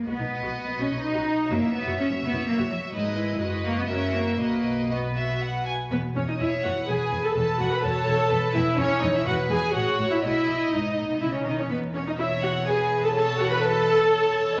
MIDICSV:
0, 0, Header, 1, 6, 480
1, 0, Start_track
1, 0, Key_signature, 5, "major"
1, 0, Tempo, 478469
1, 64, Time_signature, 3, 2, 24, 8
1, 3903, Tempo, 501672
1, 5834, Key_signature, 4, "major"
1, 6303, Tempo, 480769
1, 14491, End_track
2, 0, Start_track
2, 0, Title_t, "Violin section"
2, 0, Program_c, 0, 48
2, 70, Note_on_c, 0, 71, 43
2, 1478, Note_off_c, 0, 71, 0
2, 1516, Note_on_c, 0, 73, 52
2, 2913, Note_off_c, 0, 73, 0
2, 2938, Note_on_c, 0, 71, 57
2, 3379, Note_off_c, 0, 71, 0
2, 3412, Note_on_c, 0, 71, 57
2, 3891, Note_off_c, 0, 71, 0
2, 3906, Note_on_c, 0, 70, 48
2, 4377, Note_off_c, 0, 70, 0
2, 4389, Note_on_c, 0, 71, 48
2, 4865, Note_off_c, 0, 71, 0
2, 4878, Note_on_c, 0, 71, 49
2, 5625, Note_off_c, 0, 71, 0
2, 5843, Note_on_c, 0, 71, 58
2, 5920, Note_off_c, 0, 71, 0
2, 6079, Note_on_c, 0, 73, 56
2, 6188, Note_off_c, 0, 73, 0
2, 6192, Note_on_c, 0, 75, 54
2, 6303, Note_off_c, 0, 75, 0
2, 6310, Note_on_c, 0, 76, 58
2, 6546, Note_off_c, 0, 76, 0
2, 6546, Note_on_c, 0, 78, 62
2, 6781, Note_on_c, 0, 80, 67
2, 6784, Note_off_c, 0, 78, 0
2, 7138, Note_on_c, 0, 81, 58
2, 7141, Note_off_c, 0, 80, 0
2, 7247, Note_off_c, 0, 81, 0
2, 7259, Note_on_c, 0, 81, 72
2, 7494, Note_off_c, 0, 81, 0
2, 7501, Note_on_c, 0, 78, 74
2, 7619, Note_off_c, 0, 78, 0
2, 7619, Note_on_c, 0, 83, 74
2, 7738, Note_off_c, 0, 83, 0
2, 7738, Note_on_c, 0, 81, 88
2, 8435, Note_off_c, 0, 81, 0
2, 8452, Note_on_c, 0, 76, 80
2, 8686, Note_on_c, 0, 73, 96
2, 8687, Note_off_c, 0, 76, 0
2, 8918, Note_off_c, 0, 73, 0
2, 8925, Note_on_c, 0, 75, 66
2, 8972, Note_off_c, 0, 75, 0
2, 9046, Note_on_c, 0, 76, 78
2, 9161, Note_off_c, 0, 76, 0
2, 9163, Note_on_c, 0, 78, 86
2, 9243, Note_off_c, 0, 78, 0
2, 9407, Note_on_c, 0, 80, 89
2, 9637, Note_off_c, 0, 80, 0
2, 9645, Note_on_c, 0, 78, 76
2, 9999, Note_off_c, 0, 78, 0
2, 10007, Note_on_c, 0, 76, 64
2, 10055, Note_off_c, 0, 76, 0
2, 10127, Note_on_c, 0, 76, 76
2, 10606, Note_off_c, 0, 76, 0
2, 10617, Note_on_c, 0, 75, 54
2, 11094, Note_off_c, 0, 75, 0
2, 11102, Note_on_c, 0, 76, 56
2, 11223, Note_on_c, 0, 73, 44
2, 11224, Note_off_c, 0, 76, 0
2, 11272, Note_off_c, 0, 73, 0
2, 11350, Note_on_c, 0, 75, 59
2, 11469, Note_off_c, 0, 75, 0
2, 11472, Note_on_c, 0, 73, 51
2, 11591, Note_off_c, 0, 73, 0
2, 11597, Note_on_c, 0, 71, 60
2, 11676, Note_off_c, 0, 71, 0
2, 11843, Note_on_c, 0, 73, 59
2, 11959, Note_off_c, 0, 73, 0
2, 11968, Note_on_c, 0, 75, 62
2, 12015, Note_off_c, 0, 75, 0
2, 12083, Note_on_c, 0, 76, 67
2, 12318, Note_off_c, 0, 76, 0
2, 12329, Note_on_c, 0, 78, 76
2, 12565, Note_off_c, 0, 78, 0
2, 12569, Note_on_c, 0, 80, 72
2, 12916, Note_off_c, 0, 80, 0
2, 12925, Note_on_c, 0, 81, 75
2, 13033, Note_off_c, 0, 81, 0
2, 13045, Note_on_c, 0, 81, 86
2, 13277, Note_off_c, 0, 81, 0
2, 13287, Note_on_c, 0, 78, 85
2, 13402, Note_off_c, 0, 78, 0
2, 13402, Note_on_c, 0, 83, 82
2, 13517, Note_off_c, 0, 83, 0
2, 13523, Note_on_c, 0, 81, 97
2, 14448, Note_off_c, 0, 81, 0
2, 14491, End_track
3, 0, Start_track
3, 0, Title_t, "Violin section"
3, 0, Program_c, 1, 48
3, 65, Note_on_c, 1, 75, 48
3, 1475, Note_off_c, 1, 75, 0
3, 1511, Note_on_c, 1, 76, 51
3, 2910, Note_off_c, 1, 76, 0
3, 2947, Note_on_c, 1, 75, 62
3, 3384, Note_off_c, 1, 75, 0
3, 3416, Note_on_c, 1, 75, 53
3, 3893, Note_off_c, 1, 75, 0
3, 3903, Note_on_c, 1, 76, 51
3, 4385, Note_off_c, 1, 76, 0
3, 4391, Note_on_c, 1, 75, 50
3, 4860, Note_off_c, 1, 75, 0
3, 4872, Note_on_c, 1, 75, 54
3, 4948, Note_off_c, 1, 75, 0
3, 5116, Note_on_c, 1, 76, 54
3, 5350, Note_off_c, 1, 76, 0
3, 5357, Note_on_c, 1, 78, 55
3, 5597, Note_off_c, 1, 78, 0
3, 5599, Note_on_c, 1, 80, 51
3, 5676, Note_off_c, 1, 80, 0
3, 6297, Note_on_c, 1, 73, 64
3, 6746, Note_off_c, 1, 73, 0
3, 6784, Note_on_c, 1, 71, 54
3, 7734, Note_on_c, 1, 73, 70
3, 7739, Note_off_c, 1, 71, 0
3, 8205, Note_on_c, 1, 71, 68
3, 8211, Note_off_c, 1, 73, 0
3, 8678, Note_on_c, 1, 73, 81
3, 8682, Note_off_c, 1, 71, 0
3, 9148, Note_off_c, 1, 73, 0
3, 9159, Note_on_c, 1, 71, 75
3, 9628, Note_off_c, 1, 71, 0
3, 9632, Note_on_c, 1, 73, 64
3, 10113, Note_off_c, 1, 73, 0
3, 10121, Note_on_c, 1, 75, 64
3, 11344, Note_off_c, 1, 75, 0
3, 12080, Note_on_c, 1, 73, 66
3, 12527, Note_off_c, 1, 73, 0
3, 12558, Note_on_c, 1, 71, 58
3, 13038, Note_off_c, 1, 71, 0
3, 13041, Note_on_c, 1, 73, 78
3, 13509, Note_off_c, 1, 73, 0
3, 13512, Note_on_c, 1, 71, 79
3, 13988, Note_off_c, 1, 71, 0
3, 13988, Note_on_c, 1, 73, 75
3, 14453, Note_off_c, 1, 73, 0
3, 14491, End_track
4, 0, Start_track
4, 0, Title_t, "Viola section"
4, 0, Program_c, 2, 48
4, 64, Note_on_c, 2, 66, 55
4, 113, Note_off_c, 2, 66, 0
4, 186, Note_on_c, 2, 63, 31
4, 235, Note_off_c, 2, 63, 0
4, 425, Note_on_c, 2, 66, 50
4, 474, Note_off_c, 2, 66, 0
4, 672, Note_on_c, 2, 59, 37
4, 719, Note_off_c, 2, 59, 0
4, 791, Note_on_c, 2, 66, 50
4, 839, Note_off_c, 2, 66, 0
4, 909, Note_on_c, 2, 63, 40
4, 958, Note_off_c, 2, 63, 0
4, 1149, Note_on_c, 2, 66, 62
4, 1198, Note_off_c, 2, 66, 0
4, 1508, Note_on_c, 2, 66, 53
4, 1557, Note_off_c, 2, 66, 0
4, 1633, Note_on_c, 2, 64, 42
4, 1680, Note_off_c, 2, 64, 0
4, 1868, Note_on_c, 2, 66, 67
4, 1916, Note_off_c, 2, 66, 0
4, 2106, Note_on_c, 2, 61, 37
4, 2154, Note_off_c, 2, 61, 0
4, 2221, Note_on_c, 2, 66, 62
4, 2271, Note_off_c, 2, 66, 0
4, 2338, Note_on_c, 2, 64, 51
4, 2388, Note_off_c, 2, 64, 0
4, 2579, Note_on_c, 2, 66, 66
4, 2628, Note_off_c, 2, 66, 0
4, 2935, Note_on_c, 2, 63, 57
4, 3157, Note_off_c, 2, 63, 0
4, 3169, Note_on_c, 2, 64, 56
4, 3410, Note_off_c, 2, 64, 0
4, 3410, Note_on_c, 2, 66, 58
4, 3892, Note_off_c, 2, 66, 0
4, 3904, Note_on_c, 2, 66, 56
4, 4376, Note_off_c, 2, 66, 0
4, 4389, Note_on_c, 2, 66, 47
4, 4862, Note_off_c, 2, 66, 0
4, 4874, Note_on_c, 2, 66, 52
4, 5623, Note_off_c, 2, 66, 0
4, 5837, Note_on_c, 2, 59, 70
4, 5914, Note_off_c, 2, 59, 0
4, 6074, Note_on_c, 2, 61, 67
4, 6120, Note_off_c, 2, 61, 0
4, 6190, Note_on_c, 2, 63, 60
4, 6236, Note_off_c, 2, 63, 0
4, 6305, Note_on_c, 2, 64, 75
4, 6385, Note_off_c, 2, 64, 0
4, 6546, Note_on_c, 2, 66, 69
4, 6625, Note_off_c, 2, 66, 0
4, 6788, Note_on_c, 2, 68, 84
4, 7137, Note_off_c, 2, 68, 0
4, 7147, Note_on_c, 2, 69, 79
4, 7194, Note_off_c, 2, 69, 0
4, 7262, Note_on_c, 2, 69, 83
4, 7496, Note_off_c, 2, 69, 0
4, 7498, Note_on_c, 2, 66, 83
4, 7616, Note_off_c, 2, 66, 0
4, 7620, Note_on_c, 2, 71, 81
4, 7732, Note_on_c, 2, 69, 101
4, 7738, Note_off_c, 2, 71, 0
4, 8445, Note_on_c, 2, 64, 97
4, 8446, Note_off_c, 2, 69, 0
4, 8679, Note_off_c, 2, 64, 0
4, 8683, Note_on_c, 2, 61, 109
4, 8916, Note_on_c, 2, 63, 90
4, 8921, Note_off_c, 2, 61, 0
4, 9038, Note_off_c, 2, 63, 0
4, 9043, Note_on_c, 2, 64, 91
4, 9156, Note_on_c, 2, 66, 96
4, 9161, Note_off_c, 2, 64, 0
4, 9236, Note_off_c, 2, 66, 0
4, 9396, Note_on_c, 2, 68, 88
4, 9632, Note_off_c, 2, 68, 0
4, 9635, Note_on_c, 2, 66, 97
4, 10002, Note_off_c, 2, 66, 0
4, 10008, Note_on_c, 2, 64, 71
4, 10117, Note_off_c, 2, 64, 0
4, 10129, Note_on_c, 2, 64, 89
4, 10606, Note_off_c, 2, 64, 0
4, 10619, Note_on_c, 2, 63, 69
4, 11104, Note_off_c, 2, 63, 0
4, 11104, Note_on_c, 2, 64, 73
4, 11153, Note_off_c, 2, 64, 0
4, 11231, Note_on_c, 2, 61, 56
4, 11345, Note_on_c, 2, 63, 71
4, 11348, Note_off_c, 2, 61, 0
4, 11469, Note_off_c, 2, 63, 0
4, 11474, Note_on_c, 2, 61, 60
4, 11594, Note_off_c, 2, 61, 0
4, 11594, Note_on_c, 2, 59, 76
4, 11674, Note_off_c, 2, 59, 0
4, 11841, Note_on_c, 2, 61, 75
4, 11889, Note_off_c, 2, 61, 0
4, 11965, Note_on_c, 2, 63, 68
4, 12012, Note_off_c, 2, 63, 0
4, 12082, Note_on_c, 2, 64, 78
4, 12162, Note_off_c, 2, 64, 0
4, 12321, Note_on_c, 2, 66, 77
4, 12401, Note_off_c, 2, 66, 0
4, 12566, Note_on_c, 2, 68, 96
4, 12915, Note_off_c, 2, 68, 0
4, 12925, Note_on_c, 2, 69, 88
4, 12972, Note_off_c, 2, 69, 0
4, 13044, Note_on_c, 2, 69, 108
4, 13276, Note_off_c, 2, 69, 0
4, 13282, Note_on_c, 2, 66, 92
4, 13400, Note_off_c, 2, 66, 0
4, 13408, Note_on_c, 2, 71, 98
4, 13520, Note_on_c, 2, 69, 124
4, 13523, Note_off_c, 2, 71, 0
4, 14465, Note_off_c, 2, 69, 0
4, 14491, End_track
5, 0, Start_track
5, 0, Title_t, "Cello section"
5, 0, Program_c, 3, 48
5, 69, Note_on_c, 3, 59, 67
5, 779, Note_off_c, 3, 59, 0
5, 793, Note_on_c, 3, 61, 68
5, 1033, Note_off_c, 3, 61, 0
5, 1034, Note_on_c, 3, 63, 68
5, 1506, Note_off_c, 3, 63, 0
5, 1513, Note_on_c, 3, 58, 69
5, 1752, Note_off_c, 3, 58, 0
5, 1753, Note_on_c, 3, 59, 71
5, 1986, Note_off_c, 3, 59, 0
5, 1993, Note_on_c, 3, 61, 75
5, 2073, Note_off_c, 3, 61, 0
5, 2231, Note_on_c, 3, 59, 78
5, 2463, Note_off_c, 3, 59, 0
5, 2470, Note_on_c, 3, 58, 68
5, 2551, Note_off_c, 3, 58, 0
5, 2707, Note_on_c, 3, 54, 74
5, 2787, Note_off_c, 3, 54, 0
5, 2945, Note_on_c, 3, 56, 83
5, 3643, Note_off_c, 3, 56, 0
5, 3660, Note_on_c, 3, 58, 84
5, 3778, Note_off_c, 3, 58, 0
5, 3787, Note_on_c, 3, 59, 68
5, 3835, Note_off_c, 3, 59, 0
5, 3906, Note_on_c, 3, 61, 69
5, 4139, Note_off_c, 3, 61, 0
5, 4139, Note_on_c, 3, 58, 73
5, 4374, Note_off_c, 3, 58, 0
5, 4385, Note_on_c, 3, 58, 74
5, 4863, Note_off_c, 3, 58, 0
5, 4878, Note_on_c, 3, 59, 60
5, 5357, Note_off_c, 3, 59, 0
5, 5837, Note_on_c, 3, 40, 57
5, 5914, Note_off_c, 3, 40, 0
5, 6075, Note_on_c, 3, 40, 55
5, 6152, Note_off_c, 3, 40, 0
5, 6306, Note_on_c, 3, 40, 52
5, 6386, Note_off_c, 3, 40, 0
5, 6544, Note_on_c, 3, 40, 63
5, 6624, Note_off_c, 3, 40, 0
5, 6784, Note_on_c, 3, 40, 52
5, 6864, Note_off_c, 3, 40, 0
5, 7021, Note_on_c, 3, 40, 58
5, 7101, Note_off_c, 3, 40, 0
5, 7260, Note_on_c, 3, 40, 66
5, 7340, Note_off_c, 3, 40, 0
5, 7497, Note_on_c, 3, 40, 61
5, 7577, Note_off_c, 3, 40, 0
5, 7734, Note_on_c, 3, 40, 68
5, 7814, Note_off_c, 3, 40, 0
5, 7973, Note_on_c, 3, 40, 71
5, 8052, Note_off_c, 3, 40, 0
5, 8207, Note_on_c, 3, 40, 66
5, 8286, Note_off_c, 3, 40, 0
5, 8447, Note_on_c, 3, 40, 79
5, 8527, Note_off_c, 3, 40, 0
5, 8682, Note_on_c, 3, 40, 83
5, 8762, Note_off_c, 3, 40, 0
5, 8921, Note_on_c, 3, 40, 78
5, 9001, Note_off_c, 3, 40, 0
5, 9157, Note_on_c, 3, 40, 77
5, 9237, Note_off_c, 3, 40, 0
5, 9394, Note_on_c, 3, 40, 74
5, 9474, Note_off_c, 3, 40, 0
5, 9634, Note_on_c, 3, 45, 64
5, 9713, Note_off_c, 3, 45, 0
5, 9881, Note_on_c, 3, 45, 64
5, 9961, Note_off_c, 3, 45, 0
5, 10129, Note_on_c, 3, 47, 62
5, 10209, Note_off_c, 3, 47, 0
5, 10373, Note_on_c, 3, 47, 58
5, 10453, Note_off_c, 3, 47, 0
5, 10624, Note_on_c, 3, 44, 59
5, 10846, Note_off_c, 3, 44, 0
5, 10861, Note_on_c, 3, 45, 53
5, 10982, Note_off_c, 3, 45, 0
5, 10990, Note_on_c, 3, 47, 51
5, 11105, Note_off_c, 3, 47, 0
5, 11110, Note_on_c, 3, 49, 57
5, 11345, Note_off_c, 3, 49, 0
5, 11352, Note_on_c, 3, 51, 59
5, 11594, Note_off_c, 3, 51, 0
5, 11597, Note_on_c, 3, 40, 68
5, 14426, Note_off_c, 3, 40, 0
5, 14491, End_track
6, 0, Start_track
6, 0, Title_t, "Double bass section"
6, 0, Program_c, 4, 48
6, 62, Note_on_c, 4, 35, 57
6, 111, Note_off_c, 4, 35, 0
6, 182, Note_on_c, 4, 35, 37
6, 232, Note_off_c, 4, 35, 0
6, 426, Note_on_c, 4, 35, 55
6, 475, Note_off_c, 4, 35, 0
6, 671, Note_on_c, 4, 35, 38
6, 719, Note_off_c, 4, 35, 0
6, 785, Note_on_c, 4, 35, 57
6, 834, Note_off_c, 4, 35, 0
6, 910, Note_on_c, 4, 35, 43
6, 959, Note_off_c, 4, 35, 0
6, 1148, Note_on_c, 4, 35, 59
6, 1198, Note_off_c, 4, 35, 0
6, 1508, Note_on_c, 4, 30, 65
6, 1557, Note_off_c, 4, 30, 0
6, 1631, Note_on_c, 4, 30, 38
6, 1680, Note_off_c, 4, 30, 0
6, 1867, Note_on_c, 4, 30, 61
6, 1915, Note_off_c, 4, 30, 0
6, 2107, Note_on_c, 4, 30, 46
6, 2155, Note_off_c, 4, 30, 0
6, 2226, Note_on_c, 4, 30, 65
6, 2274, Note_off_c, 4, 30, 0
6, 2343, Note_on_c, 4, 30, 52
6, 2392, Note_off_c, 4, 30, 0
6, 2580, Note_on_c, 4, 30, 70
6, 2629, Note_off_c, 4, 30, 0
6, 2936, Note_on_c, 4, 32, 61
6, 3378, Note_off_c, 4, 32, 0
6, 3410, Note_on_c, 4, 30, 63
6, 3891, Note_off_c, 4, 30, 0
6, 3903, Note_on_c, 4, 30, 63
6, 4375, Note_off_c, 4, 30, 0
6, 4386, Note_on_c, 4, 35, 54
6, 5638, Note_off_c, 4, 35, 0
6, 5832, Note_on_c, 4, 28, 56
6, 5909, Note_off_c, 4, 28, 0
6, 6069, Note_on_c, 4, 28, 53
6, 6145, Note_off_c, 4, 28, 0
6, 6303, Note_on_c, 4, 28, 59
6, 6383, Note_off_c, 4, 28, 0
6, 6544, Note_on_c, 4, 28, 48
6, 6624, Note_off_c, 4, 28, 0
6, 6781, Note_on_c, 4, 28, 62
6, 6861, Note_off_c, 4, 28, 0
6, 7021, Note_on_c, 4, 28, 59
6, 7101, Note_off_c, 4, 28, 0
6, 7261, Note_on_c, 4, 28, 62
6, 7341, Note_off_c, 4, 28, 0
6, 7496, Note_on_c, 4, 28, 64
6, 7576, Note_off_c, 4, 28, 0
6, 7734, Note_on_c, 4, 28, 71
6, 7814, Note_off_c, 4, 28, 0
6, 7972, Note_on_c, 4, 28, 62
6, 8052, Note_off_c, 4, 28, 0
6, 8213, Note_on_c, 4, 28, 80
6, 8292, Note_off_c, 4, 28, 0
6, 8451, Note_on_c, 4, 28, 75
6, 8531, Note_off_c, 4, 28, 0
6, 8686, Note_on_c, 4, 28, 77
6, 8766, Note_off_c, 4, 28, 0
6, 8923, Note_on_c, 4, 28, 73
6, 9003, Note_off_c, 4, 28, 0
6, 9161, Note_on_c, 4, 28, 72
6, 9240, Note_off_c, 4, 28, 0
6, 9398, Note_on_c, 4, 28, 66
6, 9478, Note_off_c, 4, 28, 0
6, 9639, Note_on_c, 4, 33, 72
6, 9719, Note_off_c, 4, 33, 0
6, 9883, Note_on_c, 4, 33, 63
6, 9963, Note_off_c, 4, 33, 0
6, 10126, Note_on_c, 4, 35, 59
6, 10206, Note_off_c, 4, 35, 0
6, 10368, Note_on_c, 4, 35, 51
6, 10448, Note_off_c, 4, 35, 0
6, 10613, Note_on_c, 4, 35, 56
6, 10693, Note_off_c, 4, 35, 0
6, 10857, Note_on_c, 4, 35, 46
6, 10937, Note_off_c, 4, 35, 0
6, 11101, Note_on_c, 4, 35, 56
6, 11181, Note_off_c, 4, 35, 0
6, 11344, Note_on_c, 4, 35, 47
6, 11424, Note_off_c, 4, 35, 0
6, 11586, Note_on_c, 4, 28, 65
6, 14421, Note_off_c, 4, 28, 0
6, 14461, Note_on_c, 4, 39, 77
6, 14491, Note_off_c, 4, 39, 0
6, 14491, End_track
0, 0, End_of_file